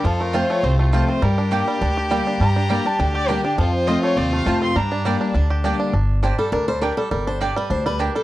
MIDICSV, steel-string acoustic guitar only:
0, 0, Header, 1, 2, 480
1, 0, Start_track
1, 0, Key_signature, -2, "minor"
1, 0, Tempo, 294406
1, 77, Time_signature, 4, 2, 24, 8
1, 13423, End_track
2, 0, Start_track
2, 0, Title_t, "Steel-string acoustic guitar"
2, 0, Program_c, 0, 25
2, 77, Note_on_c, 0, 41, 94
2, 550, Note_on_c, 0, 53, 84
2, 561, Note_on_c, 0, 57, 86
2, 575, Note_on_c, 0, 60, 90
2, 586, Note_on_c, 0, 65, 90
2, 991, Note_off_c, 0, 41, 0
2, 1010, Note_off_c, 0, 53, 0
2, 1016, Note_off_c, 0, 57, 0
2, 1023, Note_off_c, 0, 60, 0
2, 1028, Note_off_c, 0, 65, 0
2, 1038, Note_on_c, 0, 48, 95
2, 1508, Note_on_c, 0, 53, 81
2, 1523, Note_on_c, 0, 57, 86
2, 1534, Note_on_c, 0, 60, 86
2, 1543, Note_on_c, 0, 65, 87
2, 1952, Note_off_c, 0, 48, 0
2, 1970, Note_off_c, 0, 53, 0
2, 1977, Note_off_c, 0, 57, 0
2, 1982, Note_off_c, 0, 60, 0
2, 1987, Note_off_c, 0, 65, 0
2, 1993, Note_on_c, 0, 43, 95
2, 2460, Note_on_c, 0, 55, 83
2, 2471, Note_on_c, 0, 58, 87
2, 2484, Note_on_c, 0, 62, 87
2, 2495, Note_on_c, 0, 67, 98
2, 2910, Note_off_c, 0, 43, 0
2, 2926, Note_off_c, 0, 55, 0
2, 2932, Note_off_c, 0, 58, 0
2, 2938, Note_off_c, 0, 62, 0
2, 2944, Note_off_c, 0, 67, 0
2, 2960, Note_on_c, 0, 50, 97
2, 3438, Note_on_c, 0, 55, 84
2, 3447, Note_on_c, 0, 58, 89
2, 3460, Note_on_c, 0, 62, 98
2, 3470, Note_on_c, 0, 67, 93
2, 3874, Note_off_c, 0, 50, 0
2, 3896, Note_off_c, 0, 55, 0
2, 3900, Note_off_c, 0, 58, 0
2, 3907, Note_off_c, 0, 62, 0
2, 3912, Note_off_c, 0, 67, 0
2, 3926, Note_on_c, 0, 43, 94
2, 4399, Note_on_c, 0, 55, 90
2, 4410, Note_on_c, 0, 58, 90
2, 4420, Note_on_c, 0, 62, 93
2, 4433, Note_on_c, 0, 67, 90
2, 4631, Note_off_c, 0, 67, 0
2, 4644, Note_off_c, 0, 55, 0
2, 4649, Note_off_c, 0, 58, 0
2, 4651, Note_on_c, 0, 67, 63
2, 4654, Note_off_c, 0, 62, 0
2, 4682, Note_on_c, 0, 62, 52
2, 4838, Note_off_c, 0, 43, 0
2, 4869, Note_off_c, 0, 67, 0
2, 4884, Note_off_c, 0, 62, 0
2, 4885, Note_on_c, 0, 50, 100
2, 5350, Note_on_c, 0, 55, 80
2, 5364, Note_on_c, 0, 58, 83
2, 5374, Note_on_c, 0, 62, 91
2, 5388, Note_on_c, 0, 67, 91
2, 5587, Note_off_c, 0, 67, 0
2, 5600, Note_off_c, 0, 55, 0
2, 5607, Note_off_c, 0, 58, 0
2, 5607, Note_on_c, 0, 67, 62
2, 5612, Note_off_c, 0, 62, 0
2, 5637, Note_on_c, 0, 62, 52
2, 5799, Note_off_c, 0, 50, 0
2, 5827, Note_off_c, 0, 67, 0
2, 5842, Note_off_c, 0, 62, 0
2, 5842, Note_on_c, 0, 41, 93
2, 6316, Note_on_c, 0, 53, 78
2, 6324, Note_on_c, 0, 57, 80
2, 6337, Note_on_c, 0, 60, 90
2, 6347, Note_on_c, 0, 65, 94
2, 6757, Note_off_c, 0, 41, 0
2, 6776, Note_off_c, 0, 53, 0
2, 6781, Note_off_c, 0, 57, 0
2, 6787, Note_off_c, 0, 60, 0
2, 6792, Note_off_c, 0, 65, 0
2, 6803, Note_on_c, 0, 48, 94
2, 7279, Note_on_c, 0, 53, 83
2, 7289, Note_on_c, 0, 57, 94
2, 7302, Note_on_c, 0, 60, 87
2, 7311, Note_on_c, 0, 65, 98
2, 7718, Note_off_c, 0, 48, 0
2, 7738, Note_off_c, 0, 53, 0
2, 7743, Note_off_c, 0, 57, 0
2, 7750, Note_off_c, 0, 60, 0
2, 7754, Note_off_c, 0, 65, 0
2, 7763, Note_on_c, 0, 43, 95
2, 8233, Note_on_c, 0, 55, 88
2, 8247, Note_on_c, 0, 58, 92
2, 8258, Note_on_c, 0, 62, 97
2, 8265, Note_on_c, 0, 67, 98
2, 8678, Note_off_c, 0, 43, 0
2, 8696, Note_off_c, 0, 55, 0
2, 8702, Note_off_c, 0, 58, 0
2, 8708, Note_off_c, 0, 62, 0
2, 8712, Note_off_c, 0, 67, 0
2, 8726, Note_on_c, 0, 50, 90
2, 9193, Note_on_c, 0, 55, 80
2, 9203, Note_on_c, 0, 58, 90
2, 9214, Note_on_c, 0, 62, 84
2, 9222, Note_on_c, 0, 67, 87
2, 9639, Note_off_c, 0, 50, 0
2, 9655, Note_off_c, 0, 55, 0
2, 9660, Note_off_c, 0, 58, 0
2, 9666, Note_off_c, 0, 62, 0
2, 9670, Note_off_c, 0, 67, 0
2, 10167, Note_on_c, 0, 72, 70
2, 10407, Note_off_c, 0, 72, 0
2, 10413, Note_on_c, 0, 69, 88
2, 10625, Note_off_c, 0, 69, 0
2, 10632, Note_on_c, 0, 70, 87
2, 10883, Note_off_c, 0, 70, 0
2, 10890, Note_on_c, 0, 72, 107
2, 11105, Note_off_c, 0, 72, 0
2, 11112, Note_on_c, 0, 70, 81
2, 11359, Note_off_c, 0, 70, 0
2, 11365, Note_on_c, 0, 69, 91
2, 11587, Note_off_c, 0, 69, 0
2, 11593, Note_on_c, 0, 70, 79
2, 11844, Note_off_c, 0, 70, 0
2, 11858, Note_on_c, 0, 72, 88
2, 12075, Note_off_c, 0, 72, 0
2, 12086, Note_on_c, 0, 74, 89
2, 12331, Note_off_c, 0, 74, 0
2, 12348, Note_on_c, 0, 71, 84
2, 12556, Note_off_c, 0, 71, 0
2, 12562, Note_on_c, 0, 72, 100
2, 12808, Note_off_c, 0, 72, 0
2, 12820, Note_on_c, 0, 71, 94
2, 13036, Note_off_c, 0, 71, 0
2, 13044, Note_on_c, 0, 70, 83
2, 13289, Note_off_c, 0, 70, 0
2, 13302, Note_on_c, 0, 69, 92
2, 13423, Note_off_c, 0, 69, 0
2, 13423, End_track
0, 0, End_of_file